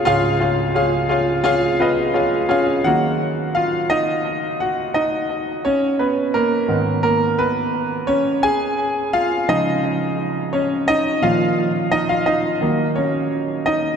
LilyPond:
<<
  \new Staff \with { instrumentName = "Grand piano" } { \time 4/4 \key ees \minor \tempo 4 = 86 << { r2 r8 <ces' ces''>4 <des' des''>8 | <ges' ges''>4 <f' f''>8 <ees' ees''>4 <ges' ges''>8 <ees' ees''>4 | <des' des''>8 <ces' ces''>8 <bes bes'>4 <bes bes'>8 <ces' ces''>4 <des' des''>8 | <aes' aes''>4 <f' f''>8 <ees' ees''>4. <des' des''>8 <ees' ees''>8 |
<f' f''>4 <ees' ees''>16 <f' f''>16 <ees' ees''>4 <des' des''>4 <ees' ees''>8 | } \\ { <f' aes' des'' f''>8 <f' aes' des'' f''>8 <f' aes' des'' f''>8 <f' aes' des'' f''>8 <f' aes' des'' f''>8 <f' aes' des'' ees''>8 <f' aes' des'' f''>8 <f' aes' f''>8 | r1 | r1 | r1 |
r1 | } >> }
  \new Staff \with { instrumentName = "Grand piano" } { \clef bass \time 4/4 \key ees \minor <des, aes,>1 | <ees ges bes>1 | r4. <aes, ees ces'>2~ <aes, ees ces'>8 | r4. <des f aes>8 r2 |
<bes, ees f>4. r8 <ees ges bes>8 r4. | }
>>